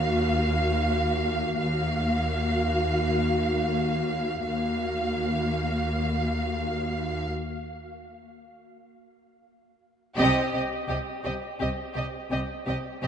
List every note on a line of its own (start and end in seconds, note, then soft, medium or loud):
0.00 1.56 D#2 medium
0.00 1.56 A#3 medium
0.00 1.56 F#4 medium
0.00 1.56 F5 medium
1.60 4.41 D#2 medium
1.60 4.42 D#2 medium
1.60 4.42 A#3 medium
1.60 4.41 F#4 medium
1.60 4.42 F5 medium
4.45 7.27 D#2 soft
4.45 7.27 A#3 medium
4.45 7.27 F#4 soft
4.45 7.27 F5 soft
10.17 10.50 C2 medium
10.17 10.50 C3 medium
10.17 10.50 C4 medium
10.17 10.50 G4 medium
10.17 10.50 D#5 medium
10.53 10.61 C2 soft
10.53 10.61 C3 soft
10.53 10.61 C4 soft
10.53 10.61 G4 soft
10.53 10.61 D#5 soft
10.89 10.97 C2 soft
10.89 10.97 C3 soft
10.89 10.97 C4 soft
10.89 10.97 G4 soft
10.89 10.98 D#5 soft
11.24 11.33 C2 soft
11.24 11.33 C3 soft
11.24 11.32 C4 soft
11.24 11.32 G4 soft
11.24 11.33 D#5 soft
11.60 11.69 C2 soft
11.60 11.68 C3 soft
11.60 11.68 C4 soft
11.60 11.68 G4 soft
11.60 11.69 D#5 soft
11.95 12.04 C2 soft
11.95 12.04 C3 soft
11.95 12.04 C4 soft
11.95 12.03 G4 soft
11.95 12.04 D#5 soft
12.31 12.41 C2 soft
12.31 12.39 C3 soft
12.31 12.39 C4 soft
12.31 12.39 G4 soft
12.31 12.40 D#5 soft
12.66 12.76 C2 soft
12.66 12.75 C3 soft
12.66 12.74 C4 soft
12.66 12.75 G4 soft
12.66 12.76 D#5 soft
13.02 13.07 C2 soft
13.02 13.07 C3 medium
13.02 13.07 C4 soft
13.02 13.07 G4 soft
13.02 13.07 D#5 soft